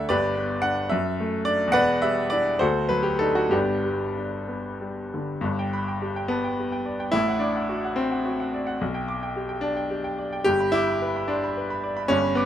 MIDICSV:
0, 0, Header, 1, 2, 480
1, 0, Start_track
1, 0, Key_signature, 1, "major"
1, 0, Tempo, 547945
1, 83, Time_signature, 6, 3, 24, 8
1, 1525, Tempo, 580271
1, 2485, Tempo, 635593
1, 4405, Tempo, 575816
1, 4885, Tempo, 555042
1, 9205, Tempo, 537634
1, 10491, End_track
2, 0, Start_track
2, 0, Title_t, "Grand piano"
2, 0, Program_c, 0, 0
2, 0, Control_c, 0, 64, 127
2, 0, Note_on_c, 0, 38, 63
2, 0, Note_on_c, 0, 57, 47
2, 0, Note_on_c, 0, 62, 58
2, 0, Note_on_c, 0, 69, 71
2, 0, Note_on_c, 0, 74, 67
2, 0, Note_on_c, 0, 76, 98
2, 0, Note_on_c, 0, 78, 87
2, 76, Note_off_c, 0, 74, 0
2, 76, Note_on_c, 0, 74, 110
2, 82, Note_on_c, 0, 31, 71
2, 85, Note_on_c, 0, 71, 83
2, 86, Note_on_c, 0, 67, 84
2, 89, Note_on_c, 0, 43, 72
2, 100, Control_c, 0, 64, 0
2, 101, Note_off_c, 0, 62, 0
2, 102, Note_off_c, 0, 38, 0
2, 104, Note_off_c, 0, 57, 0
2, 105, Note_off_c, 0, 69, 0
2, 106, Note_off_c, 0, 76, 0
2, 106, Note_off_c, 0, 78, 0
2, 254, Control_c, 0, 64, 127
2, 325, Note_on_c, 0, 59, 58
2, 529, Note_off_c, 0, 71, 0
2, 530, Note_off_c, 0, 67, 0
2, 540, Note_on_c, 0, 78, 106
2, 556, Note_on_c, 0, 62, 55
2, 559, Note_off_c, 0, 74, 0
2, 709, Note_off_c, 0, 59, 0
2, 776, Note_off_c, 0, 62, 0
2, 781, Note_off_c, 0, 31, 0
2, 784, Note_on_c, 0, 76, 94
2, 785, Note_off_c, 0, 43, 0
2, 793, Note_off_c, 0, 78, 0
2, 799, Note_on_c, 0, 42, 77
2, 816, Control_c, 0, 64, 0
2, 973, Control_c, 0, 64, 127
2, 1054, Note_on_c, 0, 57, 60
2, 1270, Note_on_c, 0, 74, 112
2, 1271, Note_off_c, 0, 76, 0
2, 1289, Note_on_c, 0, 62, 66
2, 1433, Note_off_c, 0, 57, 0
2, 1467, Note_on_c, 0, 40, 74
2, 1502, Note_off_c, 0, 42, 0
2, 1505, Note_off_c, 0, 62, 0
2, 1506, Note_on_c, 0, 78, 127
2, 1507, Note_off_c, 0, 74, 0
2, 1518, Note_on_c, 0, 28, 75
2, 1519, Note_on_c, 0, 71, 104
2, 1520, Note_on_c, 0, 74, 107
2, 1539, Control_c, 0, 64, 0
2, 1694, Control_c, 0, 64, 127
2, 1741, Note_off_c, 0, 71, 0
2, 1742, Note_off_c, 0, 74, 0
2, 1752, Note_off_c, 0, 78, 0
2, 1754, Note_on_c, 0, 76, 104
2, 1769, Note_on_c, 0, 55, 62
2, 1986, Note_on_c, 0, 74, 107
2, 1997, Note_off_c, 0, 76, 0
2, 2003, Note_on_c, 0, 62, 59
2, 2005, Note_on_c, 0, 64, 60
2, 2149, Note_off_c, 0, 55, 0
2, 2192, Note_off_c, 0, 40, 0
2, 2217, Note_off_c, 0, 28, 0
2, 2219, Note_off_c, 0, 62, 0
2, 2220, Note_off_c, 0, 64, 0
2, 2229, Note_on_c, 0, 72, 108
2, 2235, Note_off_c, 0, 74, 0
2, 2241, Note_on_c, 0, 66, 80
2, 2242, Note_on_c, 0, 69, 75
2, 2247, Note_on_c, 0, 38, 75
2, 2259, Control_c, 0, 64, 0
2, 2396, Control_c, 0, 64, 127
2, 2467, Note_off_c, 0, 66, 0
2, 2468, Note_off_c, 0, 69, 0
2, 2473, Note_on_c, 0, 71, 99
2, 2478, Note_off_c, 0, 72, 0
2, 2486, Note_on_c, 0, 54, 52
2, 2581, Note_on_c, 0, 67, 90
2, 2592, Note_off_c, 0, 71, 0
2, 2702, Note_on_c, 0, 69, 100
2, 2704, Note_off_c, 0, 67, 0
2, 2717, Note_on_c, 0, 62, 49
2, 2718, Note_on_c, 0, 63, 55
2, 2825, Note_off_c, 0, 69, 0
2, 2826, Note_on_c, 0, 66, 89
2, 2854, Note_off_c, 0, 54, 0
2, 2930, Note_off_c, 0, 62, 0
2, 2931, Note_off_c, 0, 63, 0
2, 2933, Note_off_c, 0, 38, 0
2, 2934, Note_on_c, 0, 43, 66
2, 2943, Note_on_c, 0, 67, 84
2, 2949, Note_off_c, 0, 66, 0
2, 2952, Note_on_c, 0, 31, 66
2, 2952, Note_on_c, 0, 59, 69
2, 2953, Note_on_c, 0, 62, 72
2, 2967, Control_c, 0, 64, 0
2, 3101, Control_c, 0, 64, 127
2, 3202, Note_on_c, 0, 55, 46
2, 3434, Note_off_c, 0, 62, 0
2, 3445, Note_on_c, 0, 62, 51
2, 3586, Note_off_c, 0, 55, 0
2, 3649, Note_off_c, 0, 59, 0
2, 3675, Note_off_c, 0, 67, 0
2, 3678, Note_on_c, 0, 59, 49
2, 3825, Note_off_c, 0, 62, 0
2, 3926, Note_on_c, 0, 55, 47
2, 4067, Note_off_c, 0, 59, 0
2, 4175, Note_on_c, 0, 50, 48
2, 4316, Note_off_c, 0, 55, 0
2, 4366, Note_off_c, 0, 43, 0
2, 4375, Note_off_c, 0, 31, 0
2, 4379, Note_on_c, 0, 43, 78
2, 4398, Note_on_c, 0, 31, 69
2, 4409, Note_off_c, 0, 50, 0
2, 4418, Control_c, 0, 64, 0
2, 4527, Note_on_c, 0, 79, 61
2, 4561, Control_c, 0, 64, 127
2, 4646, Note_on_c, 0, 83, 61
2, 4719, Note_off_c, 0, 79, 0
2, 4770, Note_on_c, 0, 79, 51
2, 4837, Note_off_c, 0, 83, 0
2, 4884, Note_on_c, 0, 67, 55
2, 4960, Note_off_c, 0, 79, 0
2, 5009, Note_on_c, 0, 79, 57
2, 5081, Note_off_c, 0, 67, 0
2, 5114, Note_on_c, 0, 59, 99
2, 5127, Note_on_c, 0, 81, 47
2, 5205, Note_off_c, 0, 79, 0
2, 5250, Note_on_c, 0, 79, 55
2, 5251, Note_off_c, 0, 81, 0
2, 5381, Note_on_c, 0, 67, 47
2, 5446, Note_off_c, 0, 79, 0
2, 5492, Note_on_c, 0, 79, 54
2, 5572, Note_off_c, 0, 67, 0
2, 5607, Note_on_c, 0, 74, 55
2, 5688, Note_off_c, 0, 79, 0
2, 5732, Note_on_c, 0, 79, 59
2, 5805, Note_off_c, 0, 74, 0
2, 5809, Note_off_c, 0, 43, 0
2, 5819, Note_off_c, 0, 31, 0
2, 5832, Note_on_c, 0, 64, 119
2, 5841, Note_on_c, 0, 33, 64
2, 5849, Note_on_c, 0, 45, 76
2, 5850, Note_off_c, 0, 59, 0
2, 5855, Note_off_c, 0, 79, 0
2, 5874, Control_c, 0, 64, 0
2, 5976, Note_on_c, 0, 78, 55
2, 6005, Control_c, 0, 64, 127
2, 6071, Note_on_c, 0, 62, 85
2, 6085, Note_off_c, 0, 64, 0
2, 6089, Note_on_c, 0, 86, 57
2, 6168, Note_off_c, 0, 78, 0
2, 6214, Note_on_c, 0, 78, 50
2, 6284, Note_off_c, 0, 86, 0
2, 6332, Note_on_c, 0, 66, 54
2, 6407, Note_off_c, 0, 78, 0
2, 6465, Note_on_c, 0, 78, 57
2, 6525, Note_off_c, 0, 66, 0
2, 6561, Note_on_c, 0, 60, 90
2, 6562, Note_off_c, 0, 62, 0
2, 6578, Note_on_c, 0, 79, 44
2, 6652, Note_off_c, 0, 78, 0
2, 6693, Note_on_c, 0, 78, 55
2, 6696, Note_off_c, 0, 79, 0
2, 6817, Note_on_c, 0, 66, 50
2, 6886, Note_off_c, 0, 78, 0
2, 6943, Note_on_c, 0, 78, 56
2, 7008, Note_off_c, 0, 66, 0
2, 7062, Note_on_c, 0, 74, 51
2, 7131, Note_off_c, 0, 78, 0
2, 7175, Note_on_c, 0, 78, 64
2, 7249, Note_off_c, 0, 74, 0
2, 7250, Note_off_c, 0, 33, 0
2, 7254, Note_off_c, 0, 45, 0
2, 7286, Note_off_c, 0, 60, 0
2, 7293, Note_off_c, 0, 78, 0
2, 7299, Note_on_c, 0, 35, 75
2, 7309, Control_c, 0, 64, 0
2, 7414, Note_on_c, 0, 79, 55
2, 7433, Control_c, 0, 64, 127
2, 7535, Note_on_c, 0, 86, 58
2, 7603, Note_off_c, 0, 79, 0
2, 7659, Note_on_c, 0, 79, 53
2, 7723, Note_off_c, 0, 86, 0
2, 7777, Note_on_c, 0, 67, 54
2, 7845, Note_off_c, 0, 79, 0
2, 7886, Note_on_c, 0, 79, 55
2, 7963, Note_off_c, 0, 67, 0
2, 7990, Note_on_c, 0, 62, 95
2, 8006, Note_on_c, 0, 81, 50
2, 8077, Note_off_c, 0, 79, 0
2, 8125, Note_on_c, 0, 79, 56
2, 8126, Note_off_c, 0, 81, 0
2, 8246, Note_on_c, 0, 67, 56
2, 8319, Note_off_c, 0, 79, 0
2, 8363, Note_on_c, 0, 79, 57
2, 8440, Note_off_c, 0, 67, 0
2, 8486, Note_on_c, 0, 74, 58
2, 8559, Note_off_c, 0, 79, 0
2, 8609, Note_on_c, 0, 79, 63
2, 8679, Note_off_c, 0, 74, 0
2, 8696, Note_off_c, 0, 35, 0
2, 8712, Note_on_c, 0, 67, 125
2, 8719, Note_off_c, 0, 62, 0
2, 8719, Note_on_c, 0, 31, 66
2, 8726, Note_on_c, 0, 43, 72
2, 8728, Note_off_c, 0, 79, 0
2, 8740, Control_c, 0, 64, 0
2, 8850, Note_on_c, 0, 83, 64
2, 8875, Control_c, 0, 64, 127
2, 8948, Note_on_c, 0, 64, 116
2, 8957, Note_off_c, 0, 67, 0
2, 8965, Note_on_c, 0, 86, 62
2, 9039, Note_off_c, 0, 83, 0
2, 9085, Note_on_c, 0, 83, 56
2, 9157, Note_off_c, 0, 86, 0
2, 9209, Note_on_c, 0, 71, 55
2, 9279, Note_off_c, 0, 83, 0
2, 9337, Note_on_c, 0, 83, 59
2, 9403, Note_off_c, 0, 71, 0
2, 9439, Note_on_c, 0, 62, 90
2, 9441, Note_off_c, 0, 64, 0
2, 9457, Note_on_c, 0, 84, 51
2, 9527, Note_off_c, 0, 83, 0
2, 9574, Note_off_c, 0, 84, 0
2, 9582, Note_on_c, 0, 83, 59
2, 9703, Note_on_c, 0, 71, 54
2, 9768, Note_off_c, 0, 83, 0
2, 9819, Note_on_c, 0, 83, 61
2, 9888, Note_off_c, 0, 71, 0
2, 9938, Note_on_c, 0, 74, 62
2, 10005, Note_off_c, 0, 83, 0
2, 10053, Note_on_c, 0, 83, 69
2, 10123, Note_off_c, 0, 74, 0
2, 10126, Note_off_c, 0, 31, 0
2, 10130, Note_off_c, 0, 43, 0
2, 10158, Note_on_c, 0, 61, 127
2, 10160, Note_off_c, 0, 62, 0
2, 10165, Note_on_c, 0, 31, 75
2, 10169, Note_off_c, 0, 83, 0
2, 10177, Note_on_c, 0, 43, 83
2, 10183, Control_c, 0, 64, 0
2, 10298, Note_on_c, 0, 83, 62
2, 10335, Control_c, 0, 64, 127
2, 10399, Note_on_c, 0, 59, 95
2, 10400, Note_off_c, 0, 61, 0
2, 10415, Note_on_c, 0, 86, 71
2, 10482, Note_off_c, 0, 83, 0
2, 10491, Note_off_c, 0, 31, 0
2, 10491, Note_off_c, 0, 43, 0
2, 10491, Note_off_c, 0, 59, 0
2, 10491, Note_off_c, 0, 86, 0
2, 10491, End_track
0, 0, End_of_file